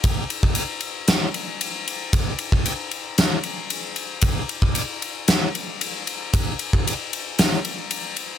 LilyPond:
\new DrumStaff \with { instrumentName = "Drums" } \drummode { \time 4/4 \tempo 4 = 114 <bd cymr>8 cymr16 bd16 cymr8 cymr8 <cymr sn>8 cymr8 cymr8 cymr8 | <bd cymr>8 cymr16 bd16 cymr8 cymr8 <cymr sn>8 cymr8 cymr8 cymr8 | <bd cymr>8 cymr16 bd16 cymr8 cymr8 <cymr sn>8 cymr8 cymr8 cymr8 | <bd cymr>8 cymr16 bd16 cymr8 cymr8 <cymr sn>16 sn16 cymr8 cymr8 cymr8 | }